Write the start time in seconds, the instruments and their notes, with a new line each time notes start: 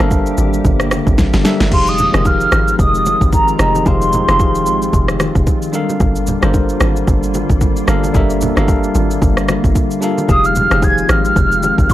Already playing: ambient pad D3 G3 A#3 G4, tine electric piano C5 E5
0.00 log drum bass G1, tine electric piano G3 D4 A4 A#4 F5, cross-stick, high bongo, shaker
0.11 kick, high bongo, shaker
0.26 shaker
0.38 log drum bass G#1, shaker
0.53 shaker
0.65 log drum bass G1, kick, low conga, shaker
0.80 cross-stick, shaker
0.91 cross-stick, low bongo, shaker
1.07 log drum bass G1, kick, shaker
1.18 log drum bass G#1, kick, snare, high bongo, shaker
1.34 log drum bass G1, snare, shaker
1.43 tine electric piano G3 D4 A4 A#4 E5, snare, shaker
1.60 log drum bass G1, snare, low bongo, shaker
1.70 log drum bass F1, ambient pad D#3 G#3 C4 F4, tine electric piano F3 D#4 G4 G#4 F5, soft synth lead C6, kick, crash, low conga
1.87 soft synth lead D#6, shaker
1.98 low conga, shaker
2.13 log drum bass F1, tine electric piano F3 D#4 G4 G#4 A#4, cross-stick, high bongo, shaker
2.25 soft synth lead F6, kick, high bongo, shaker
2.41 shaker
2.52 log drum bass G#1, cross-stick, shaker
2.68 shaker
2.79 log drum bass F1, soft synth lead D#6, kick, low conga, shaker
2.95 shaker
3.06 low bongo, shaker
3.21 log drum bass G#1, kick, shaker
3.32 soft synth lead A#5, kick, high bongo, shaker
3.48 shaker
3.58 log drum bass F1, tine electric piano F3 D#4 G4 G#4 D#5, cross-stick, shaker
3.75 low bongo, shaker
3.85 log drum bass F1, tine electric piano F3 D#4 G4 G#4 F5, soft synth lead C6, kick, low conga, shaker
4.02 shaker
4.13 low conga, shaker
4.27 log drum bass F1, tine electric piano F3 D#4 G4 G#4 F5, cross-stick, high bongo, shaker
4.39 kick, high bongo, shaker
4.55 shaker
4.66 log drum bass G#1, shaker
4.82 shaker
4.93 log drum bass F1, kick, low conga, shaker
5.08 cross-stick, shaker
5.20 cross-stick, low bongo, shaker
5.35 log drum bass F1, kick, shaker
5.47 kick, high bongo, shaker
5.62 shaker
5.72 ambient pad D3 G3 A#3, tine electric piano G3 D4 A4 A#4 F5, shaker
5.89 low bongo, shaker
6.00 log drum bass G1, kick, low conga, shaker
6.16 shaker
6.27 low conga, shaker
6.41 log drum bass G1, tine electric piano G3 D4 A4 A#4 C5, cross-stick, high bongo, shaker
6.54 kick, high bongo, shaker
6.69 shaker
6.81 log drum bass G#1, cross-stick, shaker
6.96 shaker
7.07 log drum bass G1, kick, low conga, shaker
7.23 shaker
7.34 low bongo, shaker
7.50 log drum bass G#1, kick, shaker
7.61 kick, high bongo, shaker
7.76 shaker
7.86 log drum bass G1, tine electric piano G3 D4 A4 A#4 F5, cross-stick, shaker
8.04 low bongo, shaker
8.13 log drum bass G1, tine electric piano G3 D4 A4 A#4 E5, kick, low conga, shaker
8.30 shaker
8.41 low bongo, low conga, shaker
8.55 log drum bass G1, tine electric piano G3 D4 A4 A#4 F5, cross-stick, high bongo, low bongo, shaker
8.68 kick, high bongo, shaker
8.84 shaker
8.95 log drum bass G#1, high bongo, shaker
9.11 shaker
9.22 log drum bass G1, kick, low conga, shaker
9.37 cross-stick, shaker
9.48 cross-stick, low bongo, shaker
9.64 log drum bass G1, kick, shaker
9.75 kick, high bongo, shaker
9.91 shaker
10.01 tine electric piano G3 D4 A4 A#4 F5, shaker
10.18 low bongo, shaker
10.27 log drum bass F1, ambient pad D#3 G#3 C4, tine electric piano F3 D#4 G4 G#4 F5, soft synth lead D#6, kick, low conga, shaker
10.44 soft synth lead F6, shaker
10.55 low conga, shaker
10.70 log drum bass F1, tine electric piano F3 D#4 G4 G#4 F5, cross-stick, high bongo, shaker
10.82 soft synth lead G#6, kick, high bongo, shaker
10.98 shaker
11.09 log drum bass G#1, soft synth lead F6, cross-stick, shaker
11.25 shaker
11.36 log drum bass F1, kick, low conga, shaker
11.52 shaker
11.63 low bongo, shaker
11.78 log drum bass G#1, kick, shaker
11.89 kick, high bongo, shaker